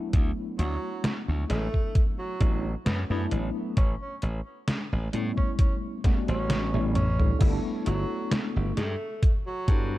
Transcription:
Already playing: tine electric piano F#3 A3 B3 D4 E4
0.13 slap bass D2, kick, closed hi-hat
0.58 slap bass D2, tenor saxophone F#3, closed hi-hat
1.04 snare, closed hi-hat
1.28 slap bass D2
1.49 slap bass A1, tenor saxophone A3, snare, closed hi-hat
1.74 kick
1.95 kick, closed hi-hat
2.19 tenor saxophone F#3
2.40 slap bass A1, tine electric piano F#3 A3 B3 D4 E4, kick, closed hi-hat
2.86 slap bass F#2, tenor saxophone B3, snare, closed hi-hat
3.10 slap bass F#2, tine electric piano F#3 A3 B3 D4 E4, tenor saxophone B3
3.31 slap bass A1, closed hi-hat
3.77 slap bass A1, tenor saxophone C#4, kick, closed hi-hat
4.02 tenor saxophone C#4
4.22 slap bass A1, closed hi-hat
4.68 snare, closed hi-hat
4.93 slap bass A1
5.13 slap bass A2, tine electric piano G3 A3 B3 C#4 E4, closed hi-hat
5.37 tenor saxophone C#4, kick
5.59 tenor saxophone C#4, kick, closed hi-hat
6.04 tine electric piano G3 A3 B3 C#4 F#4, kick, snare, closed hi-hat
6.28 slap bass A1, tenor saxophone C#4, closed hi-hat
6.50 snare, closed hi-hat
6.73 slap bass A1, tine electric piano G3 A3 B3 C#4 E4, high tom
6.95 tenor saxophone C#4, closed hi-hat, mid tom
7.19 tine electric piano G3 B3 D4 E4 A4, mid tom
7.39 slap bass G1, tine electric piano A3 B3 D4 E4 A4, kick, closed hi-hat, crash
7.86 slap bass G1, tenor saxophone F#3, closed hi-hat
8.31 snare, closed hi-hat
8.56 slap bass G1
8.77 slap bass G2, tenor saxophone A3, snare, closed hi-hat
9.23 kick, closed hi-hat
9.47 tenor saxophone F#3
9.67 slap bass G2, tine electric piano G3 B3 D4 E4 A4, kick, closed hi-hat

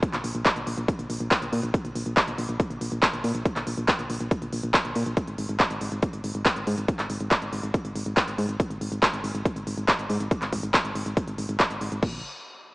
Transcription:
0.03 kick, closed hi-hat
0.13 fm bass A#1, clap, closed hi-hat
0.24 fm bass A#1, open hi-hat
0.35 fm bass A#1, closed hi-hat
0.46 kick, clap, closed hi-hat
0.56 fm bass A#1, closed hi-hat
0.67 fm bass A#1, open hi-hat
0.78 fm bass A#1, closed hi-hat
0.88 kick, closed hi-hat
0.99 fm bass A#1, closed hi-hat
1.10 fm bass A#1, open hi-hat
1.20 fm bass A#1, closed hi-hat
1.31 kick, clap, closed hi-hat
1.42 fm bass A#1, closed hi-hat
1.53 fm bass A#2, open hi-hat
1.63 fm bass A#1, closed hi-hat
1.74 kick, closed hi-hat
1.85 fm bass A#1, closed hi-hat
1.96 fm bass A#1, open hi-hat
2.06 fm bass A#1, closed hi-hat
2.17 kick, clap, closed hi-hat
2.28 fm bass A#1, closed hi-hat
2.38 fm bass A#1, open hi-hat
2.49 fm bass A#1, closed hi-hat
2.60 kick, closed hi-hat
2.70 fm bass A#1, closed hi-hat
2.81 fm bass A#1, open hi-hat
2.92 fm bass A#1, closed hi-hat
3.03 kick, clap, closed hi-hat
3.13 fm bass A#1, closed hi-hat
3.24 fm bass A#2, open hi-hat
3.35 fm bass A#1, closed hi-hat
3.45 kick, closed hi-hat
3.56 fm bass A#1, clap, closed hi-hat
3.67 fm bass A#1, open hi-hat
3.78 fm bass A#1, closed hi-hat
3.88 kick, clap, closed hi-hat
3.99 fm bass A#1, closed hi-hat
4.10 fm bass A#1, open hi-hat
4.21 fm bass A#1, closed hi-hat
4.31 kick, closed hi-hat
4.42 fm bass A#1, closed hi-hat
4.53 fm bass A#1, open hi-hat
4.63 fm bass A#1, closed hi-hat
4.74 kick, clap, closed hi-hat
4.85 fm bass A#1, closed hi-hat
4.95 fm bass A#2, open hi-hat
5.06 fm bass A#1, closed hi-hat
5.17 kick, closed hi-hat
5.28 fm bass G#1, closed hi-hat
5.38 fm bass G#1, open hi-hat
5.49 fm bass G#1, closed hi-hat
5.60 kick, clap, closed hi-hat
5.70 fm bass G#1, closed hi-hat
5.81 fm bass G#1, open hi-hat
5.92 fm bass G#1, closed hi-hat
6.02 kick, closed hi-hat
6.13 fm bass G#1, closed hi-hat
6.24 fm bass G#1, open hi-hat
6.35 fm bass G#1, closed hi-hat
6.46 kick, clap, closed hi-hat
6.56 fm bass G#1, closed hi-hat
6.67 fm bass G#2, open hi-hat
6.78 fm bass G#1, closed hi-hat
6.88 kick, closed hi-hat
6.99 fm bass G#1, clap, closed hi-hat
7.10 fm bass G#1, open hi-hat
7.20 fm bass G#1, closed hi-hat
7.31 kick, clap, closed hi-hat
7.42 fm bass G#1, closed hi-hat
7.53 fm bass G#1, open hi-hat
7.63 fm bass G#1, closed hi-hat
7.74 kick, closed hi-hat
7.85 fm bass G#1, closed hi-hat
7.96 fm bass G#1, open hi-hat
8.06 fm bass G#1, closed hi-hat
8.17 kick, clap, closed hi-hat
8.28 fm bass G#1, closed hi-hat
8.38 fm bass G#2, open hi-hat
8.49 fm bass G#1, closed hi-hat
8.60 kick, closed hi-hat
8.70 fm bass G#1, closed hi-hat
8.81 fm bass G#1, open hi-hat
8.92 fm bass G#1, closed hi-hat
9.03 kick, clap, closed hi-hat
9.13 fm bass G#1, closed hi-hat
9.24 fm bass G#1, open hi-hat
9.35 fm bass G#1, closed hi-hat
9.45 kick, closed hi-hat
9.56 fm bass G#1, closed hi-hat
9.67 fm bass G#1, open hi-hat
9.78 fm bass G#1, closed hi-hat
9.88 kick, clap, closed hi-hat
9.99 fm bass G#1, closed hi-hat
10.10 fm bass G#2, open hi-hat
10.20 fm bass G#1, closed hi-hat
10.31 kick, closed hi-hat
10.42 fm bass G#1, clap, closed hi-hat
10.53 fm bass G#1, kick, open hi-hat
10.63 fm bass G#1, closed hi-hat
10.74 kick, clap, closed hi-hat
10.85 fm bass G#1, closed hi-hat
10.95 fm bass G#1, open hi-hat
11.06 fm bass G#1, closed hi-hat
11.17 kick, closed hi-hat
11.28 fm bass G#1, closed hi-hat
11.38 fm bass G#1, open hi-hat
11.49 fm bass G#1, closed hi-hat
11.60 kick, clap, closed hi-hat
11.70 fm bass G#1, closed hi-hat
11.81 fm bass G#1, open hi-hat
11.92 fm bass G#1, closed hi-hat
12.03 fm bass A#1, kick, crash

